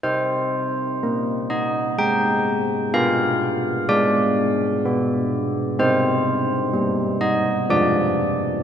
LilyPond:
<<
  \new Staff \with { instrumentName = "Church bells" } { \time 3/4 \key c \minor \tempo 4 = 63 << { c''4. ees''8 g''4 | f''4 d''4. r8 | c''4. ees''8 d''4 | } \\ { g'2. | g'2. | g'2 aes'4 | } >> }
  \new Staff \with { instrumentName = "Church bells" } { \time 3/4 \key c \minor c'4 bes4 aes4 | b4 aes4 b4 | c'4 g4 f4 | }
>>